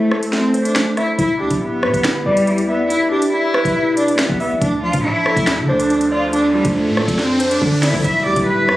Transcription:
0.00 0.30 A3 medium
0.00 0.33 A3 medium
0.00 0.76 E4 medium
0.00 0.12 A4 medium
0.00 0.54 C5 medium
0.00 0.33 E5 medium
0.12 1.19 A4 medium
0.12 cross-stick medium
0.23 closed hi-hat medium
0.33 0.75 A3 medium
0.33 0.63 C4 medium
0.33 snare medium
0.54 1.19 C5 medium
0.54 closed hi-hat medium
0.65 0.95 D4 medium
0.65 closed hi-hat medium
0.76 1.19 A3 medium
0.76 finger snap loud
0.76 snare loud
0.97 1.14 E4 medium
0.97 1.19 E5 medium
0.97 cross-stick medium
0.97 closed hi-hat medium
1.19 1.42 E1 loud
1.19 1.60 E4 medium
1.19 1.36 E4 medium
1.19 kick loud
1.19 closed hi-hat medium
1.40 1.50 E2 loud
1.40 1.57 D4 medium
1.40 2.47 G4 medium
1.50 1.84 D1 loud
1.50 kick medium
1.50 closed hi-hat medium
1.62 2.22 B3 medium
1.62 2.03 E4 medium
1.83 1.93 B2 loud
1.83 2.90 B4 medium
1.83 cross-stick loud
1.94 2.25 G1 loud
1.94 kick medium
1.94 closed hi-hat medium
2.04 2.46 E4 medium
2.04 finger snap medium
2.04 snare loud
2.26 2.98 E2 loud
2.26 2.66 G3 medium
2.26 3.33 D5 medium
2.37 closed hi-hat medium
2.47 2.89 E4 medium
2.47 closed hi-hat medium
2.58 closed hi-hat medium
2.69 2.86 B3 medium
2.69 3.76 E5 medium
2.90 3.32 E4 medium
2.90 3.07 E4 medium
2.90 closed hi-hat medium
3.12 3.28 D4 medium
3.12 4.19 G4 medium
3.22 closed hi-hat medium
3.33 3.93 E4 medium
3.33 3.75 E4 medium
3.54 4.62 B4 medium
3.54 cross-stick loud
3.65 4.27 E1 loud
3.65 kick medium
3.65 closed hi-hat medium
3.76 4.18 E4 loud
3.97 4.14 D4 medium
3.97 4.62 D5 medium
3.97 closed hi-hat medium
4.08 closed hi-hat medium
4.19 4.59 B3 medium
4.19 4.62 E4 medium
4.19 finger snap loud
4.19 snare loud
4.29 4.52 E2 loud
4.29 kick medium
4.40 4.62 E5 medium
4.40 open hi-hat medium
4.51 4.61 G1 loud
4.62 4.92 D2 loud
4.62 5.03 D4 loud
4.62 4.78 D4 medium
4.62 kick loud
4.62 closed hi-hat medium
4.62 riser medium
4.83 5.90 F3 medium
4.83 5.00 F4 medium
4.93 5.14 A2 loud
4.93 kick medium
4.93 closed hi-hat medium
5.04 5.46 D4 medium
5.04 5.65 E4 medium
5.26 6.33 A4 medium
5.26 cross-stick loud
5.37 5.59 D2 loud
5.37 kick medium
5.37 closed hi-hat medium
5.47 5.89 D4 medium
5.47 finger snap loud
5.47 snare loud
5.58 5.68 D3 loud
5.69 6.61 D2 loud
5.69 6.09 D4 medium
5.69 6.76 C5 medium
5.80 closed hi-hat medium
5.90 6.32 D4 medium
5.90 closed hi-hat medium
6.01 closed hi-hat medium
6.12 6.29 F4 medium
6.12 7.19 D5 medium
6.33 6.75 D4 loud
6.33 6.50 D4 medium
6.33 closed hi-hat medium
6.54 6.71 G3 medium
6.54 7.62 F4 medium
6.65 6.88 D2 loud
6.65 kick loud
6.65 closed hi-hat medium
6.76 7.16 A3 medium
6.76 7.18 D4 medium
6.87 7.07 A2 loud
6.97 8.04 A4 medium
6.97 cross-stick loud
7.08 7.59 F2 loud
7.08 kick medium
7.08 closed hi-hat medium
7.19 7.49 C4 medium
7.19 7.60 D4 medium
7.19 snare medium
7.40 8.04 C5 medium
7.40 closed hi-hat medium
7.51 7.81 D4 medium
7.51 closed hi-hat medium
7.62 7.92 D3 loud
7.62 8.04 D4 medium
7.62 kick medium
7.83 8.00 E4 medium
7.83 8.04 D5 medium
7.83 snare medium
7.83 closed hi-hat medium
7.94 8.04 D3 loud
7.94 kick medium
8.04 8.27 E1 loud
8.04 8.77 D3 medium
8.04 8.77 G3 medium
8.04 8.77 B3 medium
8.04 8.77 E4 medium
8.04 8.46 E4 loud
8.04 8.21 E5 medium
8.04 kick loud
8.04 closed hi-hat medium
8.04 impact medium
8.26 8.36 E2 loud
8.26 8.77 G4 medium
8.26 8.43 D5 medium
8.36 8.70 D1 loud
8.36 kick medium
8.36 closed hi-hat medium
8.47 8.77 E4 medium
8.47 8.77 B4 medium
8.69 8.77 B2 medium
8.69 8.77 B4 medium
8.69 cross-stick loud

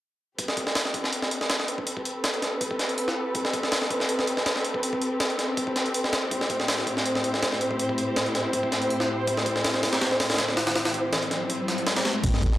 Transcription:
0.39 12.20 C4 medium
0.39 12.20 G4 medium
0.39 6.27 A4 medium
0.39 6.27 B4 medium
0.39 kick loud
0.39 closed hi-hat medium
0.48 snare medium
0.57 kick medium
0.57 closed hi-hat medium
0.67 snare medium
0.75 snare loud
0.75 open hi-hat medium
0.85 snare medium
0.94 kick medium
0.94 closed hi-hat medium
1.04 snare soft
1.13 closed hi-hat medium
1.22 snare medium
1.31 closed hi-hat medium
1.41 snare medium
1.50 snare loud
1.50 closed hi-hat medium
1.60 snare medium
1.68 closed hi-hat medium
1.78 kick medium
1.87 closed hi-hat medium
1.97 kick medium
2.05 closed hi-hat medium
2.24 snare loud
2.24 closed hi-hat medium
2.34 closed hi-hat soft
2.42 snare medium
2.42 closed hi-hat medium
2.61 kick loud
2.61 closed hi-hat medium
2.71 kick medium
2.79 snare soft
2.79 closed hi-hat medium
2.89 closed hi-hat soft
2.98 closed hi-hat medium
3.08 snare medium
3.35 kick loud
3.35 closed hi-hat medium
3.45 snare medium
3.53 kick medium
3.53 closed hi-hat medium
3.63 snare medium
3.72 snare loud
3.72 open hi-hat medium
3.82 snare medium
3.90 kick medium
3.90 closed hi-hat medium
4.00 snare soft
4.09 closed hi-hat medium
4.19 snare medium
4.27 closed hi-hat medium
4.37 snare medium
4.46 snare loud
4.46 closed hi-hat medium
4.56 snare medium
4.64 closed hi-hat medium
4.74 kick loud
4.83 closed hi-hat medium
4.93 kick loud
5.02 closed hi-hat medium
5.20 snare loud
5.20 closed hi-hat medium
5.30 closed hi-hat soft
5.39 snare medium
5.39 closed hi-hat medium
5.57 kick loud
5.57 closed hi-hat medium
5.67 kick medium
5.76 snare soft
5.76 closed hi-hat medium
5.86 closed hi-hat soft
5.94 closed hi-hat medium
6.04 snare medium
6.13 snare loud
6.13 closed hi-hat medium
6.31 12.20 A2 medium
6.31 12.20 E4 medium
6.31 12.20 C5 medium
6.31 kick loud
6.31 closed hi-hat medium
6.41 snare medium
6.50 kick medium
6.50 closed hi-hat medium
6.60 snare medium
6.68 snare loud
6.68 open hi-hat medium
6.78 snare medium
6.87 kick medium
6.87 closed hi-hat medium
6.97 snare soft
7.06 closed hi-hat medium
7.15 snare medium
7.24 closed hi-hat medium
7.34 snare medium
7.43 snare loud
7.43 closed hi-hat medium
7.52 snare medium
7.61 closed hi-hat medium
7.71 kick medium
7.79 closed hi-hat medium
7.89 kick medium
7.98 closed hi-hat medium
8.16 snare loud
8.16 closed hi-hat medium
8.26 closed hi-hat soft
8.35 snare medium
8.35 closed hi-hat medium
8.53 kick loud
8.53 closed hi-hat medium
8.63 kick medium
8.72 snare soft
8.72 closed hi-hat medium
8.82 closed hi-hat soft
8.90 closed hi-hat medium
9.00 snare medium
9.27 kick loud
9.27 closed hi-hat medium
9.27 riser medium
9.37 snare medium
9.46 kick medium
9.46 closed hi-hat medium
9.56 snare medium
9.64 snare loud
9.64 open hi-hat medium
9.74 snare medium
9.83 snare loud
9.83 open hi-hat medium
9.93 snare medium
9.93 open hi-hat medium
10.01 snare loud
10.01 open hi-hat medium
10.11 snare medium
10.20 snare loud
10.20 open hi-hat medium
10.30 snare medium
10.30 open hi-hat medium
10.34 snare medium
10.34 open hi-hat medium
10.38 snare loud
10.38 closed hi-hat medium
10.48 snare medium
10.57 snare loud
10.57 open hi-hat medium
10.67 snare loud
10.67 open hi-hat medium
10.76 snare loud
10.76 open hi-hat medium
10.85 snare loud
10.85 open hi-hat medium
10.94 closed hi-hat medium
11.13 snare loud
11.13 closed hi-hat medium
11.22 closed hi-hat soft
11.31 snare soft
11.31 closed hi-hat medium
11.50 closed hi-hat medium
11.68 snare soft
11.68 closed hi-hat medium
11.78 closed hi-hat soft
11.87 snare loud
11.87 open hi-hat medium
11.96 snare loud
11.96 open hi-hat medium
12.05 snare loud
12.05 open hi-hat medium
12.24 12.33 A1 loud
12.24 12.58 B3 medium
12.24 12.58 C4 medium
12.24 12.58 G4 medium
12.24 12.58 A4 loud
12.24 kick loud
12.24 closed hi-hat medium
12.24 crash medium
12.24 sub drop medium
12.34 snare medium
12.42 12.58 A1 loud
12.42 kick loud
12.42 closed hi-hat medium
12.52 snare medium

